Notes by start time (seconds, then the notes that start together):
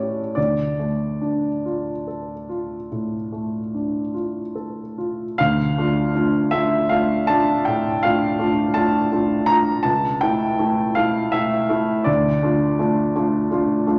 Already playing: A2 A3 C#4 G4 C#5 D5
0.35 D2 D5
0.79 A3
1.21 D4
1.65 F4
2.07 A4
2.49 F4
2.92 A2
3.32 A3
3.74 D4
4.14 F4
4.55 A4
4.98 F4
5.38 D2 F5
5.78 A3 D4 F4
6.15 A3 D4 F4
6.51 A3 D4 F4 E5
6.89 A3 D4 F4 F5
7.27 A3 D4 F4 A5
7.65 A2 G5
8.03 A3 D4 F4 F5
8.39 A3 D4 F4
8.74 A3 D4 F4 A5
9.12 A3 D4 F4
9.46 A3 D4 F4 A#5
9.83 C#2 A5
10.21 A3 E4 G5
10.59 A3 E4
10.95 A3 E4 F5
11.32 A3 E4 E5
11.69 A3 E4
12.04 D2 D5
12.43 A3 D4 F4
12.79 A3 D4 F4
13.16 A3 D4 F4
13.51 A3 D4 F4
13.87 A3 D4 F4